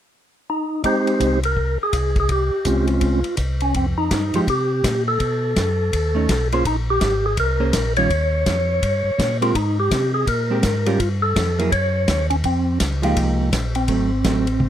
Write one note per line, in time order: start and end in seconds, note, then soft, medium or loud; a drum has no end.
0.50 0.82 D#4 medium
0.84 1.39 G#3 soft
0.84 1.39 C4 soft
0.84 1.39 D#4 soft
0.84 1.39 G4 soft
0.84 1.40 C5 medium
0.84 kick soft
0.84 ride soft
1.07 ride soft
1.20 1.78 C2 medium
1.20 kick soft
1.20 hi-hat pedal soft
1.20 ride soft
1.43 1.78 A#4 medium
1.43 ride soft
1.57 kick soft
1.83 2.19 G#4 medium
1.93 2.51 C2 medium
1.93 kick soft
1.93 hi-hat pedal soft
1.93 ride soft
2.16 kick soft
2.16 ride soft
2.20 2.30 G#4 medium
2.29 2.86 G4 medium
2.29 kick soft
2.29 ride soft
2.65 3.23 C2 medium
2.65 3.20 G#3 soft
2.65 3.20 C4 soft
2.65 3.21 C#4 soft
2.65 2.89 F4 medium
2.65 kick soft
2.65 hi-hat pedal medium
2.65 ride soft
2.87 3.36 F4 medium
2.87 ride soft
3.01 kick soft
3.01 ride soft
3.24 ride soft
3.37 3.96 C2 medium
3.37 kick soft
3.37 hi-hat pedal soft
3.37 ride soft
3.60 3.75 C#4 medium
3.60 ride soft
3.74 4.09 F2 medium
3.74 3.86 C4 medium
3.74 kick soft
3.74 ride soft
3.98 4.35 D#4 medium
4.11 4.32 G2 medium
4.11 kick soft
4.11 snare soft
4.11 hi-hat pedal soft
4.11 ride medium
4.33 4.40 G2 soft
4.33 4.46 F3 medium
4.33 4.46 G#3 medium
4.33 4.47 D#4 medium
4.33 4.41 F4 medium
4.33 4.46 G4 medium
4.33 ride soft
4.47 4.82 C3 medium
4.47 5.03 G4 medium
4.47 kick soft
4.47 ride soft
4.84 5.19 A#2 medium
4.84 kick soft
4.84 snare soft
4.84 hi-hat pedal medium
4.84 ride medium
5.08 6.48 A4 medium
5.20 5.55 B2 medium
5.20 kick soft
5.20 ride soft
5.56 5.91 F#2 medium
5.56 kick soft
5.56 snare soft
5.56 hi-hat pedal soft
5.56 ride soft
5.93 6.28 D#2 medium
5.93 kick soft
5.93 ride soft
6.15 6.27 A3 medium
6.15 6.27 C#4 medium
6.15 6.27 D#4 medium
6.29 6.64 B1 medium
6.29 kick soft
6.29 snare medium
6.29 hi-hat pedal medium
6.29 ride medium
6.52 6.64 A#3 soft
6.52 6.64 C#4 medium
6.52 6.65 F4 medium
6.52 6.64 G#4 medium
6.52 6.65 C5 medium
6.52 ride soft
6.65 7.00 A#1 medium
6.65 6.76 D#4 medium
6.65 kick soft
6.65 ride soft
6.90 7.26 G4 medium
7.01 7.36 G#1 medium
7.01 kick soft
7.01 snare medium
7.01 hi-hat pedal medium
7.01 ride soft
7.26 7.37 G#4 medium
7.37 7.72 C2 medium
7.37 7.93 A#4 medium
7.37 kick soft
7.37 ride soft
7.60 7.72 A#3 medium
7.60 7.72 C#4 medium
7.60 7.72 G#4 medium
7.60 7.72 C5 medium
7.73 8.08 A#1 medium
7.73 kick soft
7.73 snare medium
7.73 hi-hat pedal soft
7.73 ride medium
7.96 8.09 D#3 soft
7.96 8.09 G3 medium
7.96 8.09 C#4 medium
7.96 8.09 F4 medium
7.96 9.37 C#5 medium
7.96 ride soft
8.10 8.45 D#2 medium
8.10 kick soft
8.10 ride soft
8.46 8.81 F2 medium
8.46 kick soft
8.46 snare soft
8.46 hi-hat pedal soft
8.46 ride soft
8.82 9.03 G2 medium
8.82 kick soft
8.82 ride soft
9.04 9.11 G2 soft
9.18 9.53 A#2 medium
9.18 kick soft
9.18 snare medium
9.18 hi-hat pedal soft
9.18 ride medium
9.41 9.53 G#3 soft
9.41 9.53 C4 medium
9.41 9.55 F4 medium
9.41 9.53 G4 medium
9.41 9.54 A#4 medium
9.41 ride soft
9.55 9.90 G#2 medium
9.55 9.79 D#4 medium
9.55 kick soft
9.55 ride soft
9.80 10.12 G4 medium
9.91 10.26 C3 medium
9.91 kick soft
9.91 snare soft
9.91 hi-hat pedal medium
9.91 ride medium
10.14 10.27 G#4 medium
10.27 10.62 A#2 medium
10.27 10.88 A#4 medium
10.27 kick soft
10.27 ride soft
10.50 10.62 G#3 medium
10.50 10.62 C4 medium
10.50 10.62 G4 medium
10.50 10.62 A#4 medium
10.63 10.98 G#2 medium
10.63 kick soft
10.63 snare medium
10.63 hi-hat pedal medium
10.63 ride medium
10.86 10.98 G3 medium
10.86 10.98 C#4 medium
10.86 10.98 F4 medium
10.86 11.00 G4 medium
10.86 10.99 A#4 medium
10.86 ride soft
10.98 11.34 G2 medium
10.98 11.09 F4 medium
10.98 kick soft
10.98 ride soft
11.22 11.59 A4 medium
11.36 11.71 F2 medium
11.36 kick soft
11.36 snare medium
11.36 hi-hat pedal soft
11.36 ride medium
11.59 11.70 F#3 medium
11.59 11.71 A#3 medium
11.59 11.71 E4 medium
11.59 11.71 G#4 medium
11.59 11.71 A#4 medium
11.59 ride soft
11.72 12.07 F#2 medium
11.72 12.27 C#5 medium
11.72 kick soft
11.72 ride soft
12.08 12.43 D#2 medium
12.08 kick soft
12.08 snare medium
12.08 hi-hat pedal soft
12.08 ride medium
12.30 12.36 C#4 medium
12.30 ride soft
12.44 12.79 F2 medium
12.44 12.78 C4 medium
12.44 kick soft
12.44 ride soft
12.80 13.15 C#2 medium
12.80 kick soft
12.80 snare medium
12.80 hi-hat pedal medium
12.80 ride medium
13.02 13.49 F3 medium
13.02 13.50 G#3 medium
13.02 13.50 A#3 medium
13.02 13.50 D#4 medium
13.02 13.50 G4 medium
13.02 ride soft
13.16 13.51 C2 medium
13.16 kick soft
13.16 ride medium
13.52 13.88 A#1 medium
13.52 kick soft
13.52 snare medium
13.52 hi-hat pedal soft
13.52 ride medium
13.75 14.69 C4 medium
13.75 ride soft
13.88 14.23 G#1 medium
13.88 14.09 F#3 soft
13.88 14.09 A3 soft
13.88 14.10 C4 medium
13.88 kick soft
13.88 ride soft
14.24 14.60 A1 medium
14.24 14.45 F#3 soft
14.24 14.46 A3 soft
14.24 14.46 C4 soft
14.24 kick soft
14.24 snare medium
14.24 hi-hat pedal soft
14.24 ride soft
14.47 ride soft
14.60 14.69 G#1 medium
14.60 high tom soft